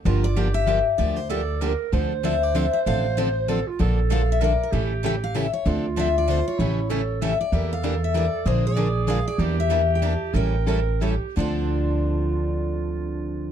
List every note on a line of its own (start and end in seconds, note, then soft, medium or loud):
0.05 0.80 G1 medium
0.05 0.25 D3 medium
0.05 0.25 F3 medium
0.05 0.25 A#3 medium
0.05 0.25 D4 medium
0.05 0.39 F4 medium
0.05 0.25 G4 medium
0.05 0.25 A#4 medium
0.24 0.54 D5 loud
0.36 0.47 D3 medium
0.36 0.47 F3 medium
0.36 0.47 A#3 medium
0.36 0.47 D4 medium
0.36 0.47 G4 medium
0.36 1.04 G4 medium
0.54 0.83 E5 loud
0.67 0.78 D3 medium
0.67 0.78 F3 medium
0.67 0.79 A#3 medium
0.67 0.79 D4 medium
0.67 0.79 G4 medium
0.98 1.74 D2 medium
0.98 1.18 D3 medium
0.98 1.18 F3 medium
0.98 1.18 A#3 medium
0.98 1.19 D4 medium
0.98 1.19 G4 medium
0.98 1.16 D5 loud
1.16 1.30 C5 medium
1.29 1.40 D3 medium
1.29 1.41 F3 medium
1.29 1.41 A#3 medium
1.29 1.41 D4 medium
1.29 1.41 G4 loud
1.29 1.63 A4 loud
1.29 1.76 D5 medium
1.61 1.72 D3 medium
1.61 1.72 F3 medium
1.61 1.72 A#3 medium
1.61 1.72 D4 medium
1.61 1.72 G4 medium
1.61 1.92 A#4 loud
1.93 2.67 D2 medium
1.93 2.12 D3 medium
1.93 2.12 F3 medium
1.93 2.12 C4 medium
1.93 2.12 D4 medium
1.93 2.12 A4 medium
1.93 3.50 C5 loud
2.23 2.34 D3 medium
2.23 2.34 F3 medium
2.23 2.34 C4 medium
2.23 2.35 D4 medium
2.23 2.35 A4 medium
2.23 2.43 E5 medium
2.43 2.56 D5 medium
2.55 2.65 D3 medium
2.55 2.65 F3 medium
2.55 2.66 C4 medium
2.55 2.65 D4 medium
2.55 2.66 A4 medium
2.55 2.72 E5 medium
2.73 2.78 E5 medium
2.86 3.61 A1 medium
2.86 3.05 D3 medium
2.86 3.06 F3 medium
2.86 3.06 C4 medium
2.86 3.06 D4 medium
2.86 3.06 A4 medium
2.86 3.15 F5 loud
3.17 3.28 D3 medium
3.17 3.28 F3 medium
3.17 3.28 C4 loud
3.17 3.28 D4 medium
3.17 3.28 A4 medium
3.17 3.63 C5 medium
3.48 3.59 D3 medium
3.48 3.59 F3 medium
3.48 3.59 C4 medium
3.48 3.59 D4 medium
3.48 3.69 A4 medium
3.48 3.59 A4 medium
3.67 3.82 F4 medium
3.79 4.54 A#1 medium
3.79 3.99 D3 medium
3.79 3.99 F3 medium
3.79 3.99 A#3 medium
3.79 3.99 D4 medium
3.79 3.99 A4 medium
3.79 4.43 A4 loud
4.10 4.21 D3 medium
4.10 4.21 F3 medium
4.10 4.21 A#3 medium
4.10 4.21 D4 medium
4.10 4.21 A4 medium
4.10 4.30 F5 loud
4.32 4.42 E5 medium
4.41 4.52 D3 medium
4.41 4.52 F3 medium
4.41 4.52 A#3 medium
4.41 4.52 D4 medium
4.41 4.52 A4 medium
4.41 4.73 A#4 medium
4.41 4.61 D5 medium
4.63 4.73 A#4 medium
4.72 5.47 A1 medium
4.72 4.92 C#3 medium
4.72 4.92 E3 medium
4.72 4.92 G3 medium
4.72 4.92 A3 medium
4.72 4.92 C#4 medium
4.72 4.92 E4 medium
4.72 5.39 G4 medium
4.72 4.93 G4 medium
4.72 4.92 A4 medium
5.03 5.14 C#3 medium
5.03 5.14 E3 medium
5.03 5.14 G3 medium
5.03 5.15 A3 medium
5.03 5.14 C#4 medium
5.03 5.14 E4 medium
5.03 5.15 G4 medium
5.03 5.14 A4 medium
5.03 5.11 G5 medium
5.24 5.36 F5 medium
5.34 5.45 C#3 medium
5.34 5.45 E3 medium
5.34 5.45 G3 medium
5.34 5.46 A3 medium
5.34 5.45 C#4 medium
5.34 5.46 E4 medium
5.34 5.46 G4 medium
5.34 5.46 A4 medium
5.34 5.53 E5 medium
5.53 5.65 C#5 medium
5.66 6.40 D2 medium
5.66 5.85 D3 medium
5.66 5.85 F3 medium
5.66 5.85 C4 medium
5.66 5.86 D4 medium
5.66 6.60 F4 medium
5.66 5.86 A4 medium
5.96 6.07 D3 medium
5.96 6.07 F3 medium
5.96 6.08 C4 loud
5.96 6.08 D4 medium
5.96 6.08 A4 loud
5.96 6.17 E5 loud
6.18 6.30 D5 medium
6.28 6.38 D3 medium
6.28 6.38 F3 medium
6.28 6.38 C4 medium
6.28 6.39 D4 medium
6.28 6.39 A4 medium
6.28 6.47 C5 medium
6.48 7.18 C#5 medium
6.59 7.34 A1 medium
6.59 6.79 C#3 medium
6.59 6.79 E3 medium
6.59 6.79 G3 medium
6.59 6.79 A3 medium
6.59 6.79 C#4 medium
6.59 6.92 E4 medium
6.59 6.79 E4 medium
6.59 6.79 G4 medium
6.59 6.79 A4 medium
6.90 7.00 C#3 medium
6.90 7.01 E3 medium
6.90 7.01 G3 medium
6.90 7.01 A3 medium
6.90 7.01 C#4 medium
6.90 7.01 E4 medium
6.90 7.01 G4 loud
6.90 7.39 A4 medium
6.90 7.01 A4 medium
7.21 7.32 C#3 medium
7.21 7.32 E3 medium
7.21 7.32 G3 medium
7.21 7.32 A3 medium
7.21 7.33 C#4 medium
7.21 7.33 E4 medium
7.21 7.33 G4 medium
7.21 7.33 A4 medium
7.21 7.39 E5 medium
7.41 7.72 D5 medium
7.52 8.27 E2 medium
7.52 7.72 E3 medium
7.52 7.72 G3 medium
7.52 7.72 A#3 medium
7.52 7.72 D4 medium
7.52 7.72 E4 medium
7.52 7.72 G4 medium
7.52 8.48 A4 medium
7.52 7.72 A#4 medium
7.73 8.01 F5 medium
7.83 7.94 E3 medium
7.83 7.94 G3 medium
7.83 7.94 A#3 medium
7.83 7.94 D4 medium
7.83 7.94 E4 medium
7.83 7.94 G4 medium
7.83 7.94 A#4 medium
8.04 8.16 E5 medium
8.14 8.25 E3 medium
8.14 8.25 G3 medium
8.14 8.25 A#3 medium
8.14 8.25 D4 medium
8.14 8.25 E4 medium
8.14 8.25 G4 medium
8.14 8.25 A#4 medium
8.14 8.45 D5 medium
8.46 9.20 A#1 medium
8.46 8.65 D3 medium
8.46 8.65 F3 medium
8.46 8.65 G#3 medium
8.46 8.65 A#3 medium
8.46 8.65 D4 medium
8.46 8.65 F4 medium
8.46 9.42 G#4 medium
8.46 8.66 G#4 medium
8.46 8.66 A#4 medium
8.46 8.64 C5 medium
8.67 9.09 D5 medium
8.76 8.87 D3 medium
8.76 8.87 F3 medium
8.76 8.87 G#3 medium
8.76 8.87 A#3 medium
8.76 8.87 D4 medium
8.76 8.87 F4 medium
8.76 8.87 G#4 medium
8.76 8.88 A#4 medium
9.07 9.18 D3 medium
9.07 9.18 F3 medium
9.07 9.18 G#3 medium
9.07 9.18 A#3 medium
9.07 9.19 D4 medium
9.07 9.18 F4 medium
9.07 9.18 G#4 medium
9.07 9.19 A#4 medium
9.07 9.27 F5 medium
9.28 9.56 D5 medium
9.38 10.15 E2 medium
9.38 9.59 E3 medium
9.38 9.59 G3 medium
9.38 9.58 A#3 medium
9.38 9.59 D4 medium
9.38 9.59 E4 medium
9.38 9.59 G4 medium
9.38 10.36 G4 medium
9.38 9.59 A#4 medium
9.60 9.90 E5 medium
9.70 9.81 E3 medium
9.70 9.81 G3 medium
9.70 9.81 A#3 medium
9.70 9.81 D4 medium
9.70 9.81 E4 medium
9.70 9.81 G4 medium
9.70 9.81 A#4 medium
9.95 9.99 G5 medium
10.02 10.13 E3 medium
10.02 10.13 G3 medium
10.02 10.13 A#3 medium
10.02 10.13 D4 medium
10.02 10.13 E4 medium
10.02 10.13 G4 medium
10.02 10.13 A#4 medium
10.02 10.36 A5 medium
10.34 11.16 A1 medium
10.34 10.55 E3 medium
10.34 10.55 G3 medium
10.34 10.55 C#4 medium
10.34 10.55 E4 medium
10.34 10.55 A4 medium
10.34 10.67 A#4 medium
10.34 11.20 G5 medium
10.67 10.79 E3 medium
10.67 10.79 G3 medium
10.67 10.79 C#4 medium
10.67 10.79 E4 medium
10.67 10.79 A4 medium
10.67 11.04 A#4 medium
11.02 11.14 E3 medium
11.02 11.14 G3 medium
11.02 11.14 C#4 medium
11.02 11.14 E4 medium
11.02 11.37 G4 medium
11.02 11.14 A4 medium
11.36 13.52 D2 medium
11.36 13.52 D3 medium
11.36 13.52 F3 medium
11.36 13.52 C4 medium
11.36 13.52 D4 medium
11.36 13.52 F4 medium
11.36 13.52 A4 medium
11.40 13.52 D5 medium